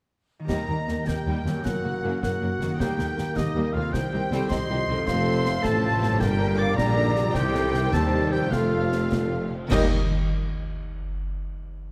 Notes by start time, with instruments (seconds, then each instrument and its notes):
0.39 harp D#3 A#3 D#4
0.45 tuba D#2, viola section G3, trombone section G3 A#3, harp G4, clarinet A#4, violin section A#5, oboe A#5
0.49 double bass section D#2, cello section D#2, violin section G3 D#4, viola section A#3, flute section D#5, concert bass drum, snare, crash
0.68 tuba D#2, double bass section D#2, cello section D#2, viola section G3 A#3, violin section A#3 G4
0.87 tuba D#2, double bass section D#2, cello section D#2, viola section G3 A#3, violin section D#4 A#4, snare
1.05 double bass section D#2, tuba D#2, cello section D#2, viola section G3 A#3, violin section A#3 G4 G5, clarinet G4, flute section A#4, oboe G5, concert bass drum, snare
1.26 double bass section D#2, cello section D#2, tuba D#2, violin section G3 D#4, viola section G3 A#3
1.45 double bass section D#2, tuba D#2, cello section D#2, harp F#2, viola section G3 A#3, violin section A#3 G4, snare
1.51 harp A#3
1.56 harp C#4
1.60 violin section C#4, clarinet F#4, harp A#4
1.64 tuba F#1, double bass section F#1, cello section F#2, trombone section F#3, viola section F#3 A#3, violin section A#4 F#5, french horn section A#4, flute section A#4, oboe F#5, concert bass drum, snare
1.83 double bass section F#1, tuba F#1, cello section F#2, viola section F#3 A#3, violin section A#3 F#4
2.03 tuba F#1, double bass section F#1, cello section F#2, viola section F#3 A#3, violin section A#3 C#4
2.21 tuba F#1, double bass section F#1, cello section F#2, viola section F#3 A#3, violin section A#3 F#4 F#5, clarinet F#4, french horn section G#4, flute section A#4, oboe F#5, concert bass drum, snare
2.41 tuba F#1, double bass section F#1, cello section F#2, viola section F#3 A#3, violin section C#4 A#4, french horn section F#4
2.60 double bass section F#1, tuba F#1, cello section F#2, harp D#3, viola section F#3 A#3, violin section A#3 F#4, french horn section A#4, snare
2.66 harp A#3
2.71 harp D#4
2.75 tuba D#2, double bass section D#2, harp G4, clarinet G4, french horn section G4, violin section G5
2.79 cello section D#2, trombone section D#3, viola section G3 A#3, violin section G3 A#3, flute section A#4, oboe G5, concert bass drum, snare
2.97 double bass section D#2, tuba D#2, cello section D#2, viola section G3 A#3, violin section A#3 D#4, french horn section A4, snare
3.17 double bass section D#2, tuba D#2, cello section D#2, viola section G3 A#3, violin section D#4 G4, french horn section A#4, snare
3.35 double bass section D#2, tuba D#2, cello section D#2, viola section G3 A#3, violin section A#3 D#4 D#5, clarinet D#4, flute section G4, oboe D#5, concert bass drum, snare
3.54 double bass section D#2, tuba D#2, cello section D#2, viola section G3 A#3, violin section G3 A#3
3.73 double bass section D#2, tuba D#2, cello section D#2, harp C3, viola section G3 A#3, violin section A#3 D#4 F5, clarinet F4, flute section A4, oboe F5
3.80 harp C4
3.84 harp D#4
3.89 double bass section C2, tuba C2, violin section D#4 G5, harp G4, oboe G5
3.93 cello section C2, viola section G3 C4, trombone section G3, violin section G4, clarinet G4, flute section C5, french horn section C5, concert bass drum, snare
4.12 tuba C2, double bass section C2, cello section C2, viola section G3 C4, violin section C4 D#4, french horn section A#4
4.31 tuba C2, cello section C2, double bass section C2, viola section G3 C4, violin section G3 C4, french horn section A4, snare
4.49 tuba C2, double bass section C2, cello section C2, viola section G3 C4, violin section C4 D#4 C6, french horn section G4, clarinet C5, flute section D#5, oboe C6, concert bass drum, snare
4.69 tuba C2, cello section C2, double bass section C2, viola section G3 C4, violin section D#4 G4, french horn section F4
4.88 tuba C2, cello section C2, double bass section C2, harp F2, viola section G3 C4, violin section C4 D#4, french horn section A4
4.93 harp C4
4.97 harp F4
5.02 harp A4
5.06 double bass section F1, tuba F1, cello section F2, trombone section C3 A3, viola section F3 C4, violin section F4 A4 C6, clarinet C5, flute section F5, oboe C6, concert bass drum, snare
5.45 snare
5.62 double bass section A1, tuba A1, cello section A2, viola section F3 C4, violin section F4 A4 A5, clarinet A4, flute section C5, oboe A5, concert bass drum, snare
6.02 harp G2, snare
6.07 harp G3
6.12 harp D4
6.16 harp A#4
6.20 tuba G1, double bass section G1, cello section G2, viola section D3 G3, trombone section D3 G3, violin section A#3 G4 G5, clarinet G4, french horn section A#4, flute section A#4, oboe G5, concert bass drum, snare
6.58 clarinet D5, flute section F5, violin section D6, oboe D6
6.76 tuba A#1, double bass section A#1, cello section A#2, viola section D3 G3, violin section A#3 G4 A#5, french horn section D4, clarinet A#4, flute section D5, oboe A#5, concert bass drum, snare
6.96 french horn section D#4
7.14 harp C3, french horn section F4, snare
7.22 harp G3
7.26 harp D#4
7.31 tuba C2, double bass section C2, cello section C3, trombone section D#3, clarinet G4, harp C5, flute section C5, concert bass drum, snare
7.35 viola section D#3 G3, violin section C4 G4 G5, french horn section G4, oboe G5
7.54 french horn section A4, snare
7.73 french horn section A#4, snare
7.92 tuba D#2, double bass section D#2, cello section D#2, clarinet A4, french horn section C5, flute section C5, oboe A5, violin section A5, concert bass drum, snare
8.32 harp F3, clarinet G4, flute section A#4, oboe G5, violin section G5
8.39 harp A3
8.44 harp F4
8.48 tuba F1, double bass section F1, flute section A4, french horn section A4, harp C5, oboe F5, violin section F5
8.52 cello section F2, trombone section C3 A3, viola section F3 A3, violin section C4 F4, clarinet F4, concert bass drum, snare
8.92 snare
9.12 concert bass drum, snare
9.68 double bass section D#2, tuba D#2, cello section D#2, trombone section A#2 G3, harp D#3 A#3 D#4, viola section G3 A#3, violin section D#4 A#4 D#5, oboe G4, clarinet D#5, flute section D#5, concert bass drum, snare, crash
9.72 french horn section A#3 D#4, harp G4 D#5 G5